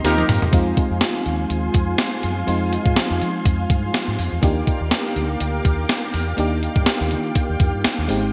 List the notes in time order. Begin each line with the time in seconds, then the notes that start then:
Already playing: A#3 C4 D#4 G4 D#5 A#5 C6
0.04 D#2 A#3 C4 D#4 F4 G4 A#4, snare, closed hi-hat
0.18 high tom
0.28 F#2, mid tom, open hi-hat
0.42 floor tom
0.52 F2 G#3 C4 D#4 F4 F5 G#5 C6, kick, closed hi-hat
0.77 kick, closed hi-hat
0.91 F2
1.01 snare, closed hi-hat
1.26 D#2, closed hi-hat
1.50 D#2, closed hi-hat
1.74 F2, kick, closed hi-hat
1.98 snare, closed hi-hat
2.23 F#2, closed hi-hat
2.47 F2 G#3 C4 D#4 F4, closed hi-hat
2.73 closed hi-hat
2.86 G#2, kick
2.96 snare, closed hi-hat
3.11 F2
3.22 F3, closed hi-hat
3.46 F2, kick, closed hi-hat
3.70 G2, kick, closed hi-hat
3.94 snare, closed hi-hat
4.08 G#2
4.19 F2, open hi-hat
4.32 E2
4.42 D#2 A#3 D4 D#4 G4 A#4 G5 D6, kick, closed hi-hat
4.67 kick, closed hi-hat
4.81 D#2
4.91 snare, closed hi-hat
5.16 D2, closed hi-hat
5.40 D2, closed hi-hat
5.65 D#2, kick, closed hi-hat
5.89 snare, closed hi-hat
6.14 E2, open hi-hat
6.37 D#2 A#3 D4 D#4 G4, closed hi-hat
6.63 closed hi-hat
6.76 G2, kick
6.86 snare, closed hi-hat
7.01 D#2
7.11 D#3, closed hi-hat
7.35 kick, closed hi-hat
7.49 D#2
7.60 F2, kick, closed hi-hat
7.74 G2
7.84 muted fingered electric bass stroke, snare, closed hi-hat
7.98 D#2
8.08 G#1 G#3 C4 D#4 G4 C6, open hi-hat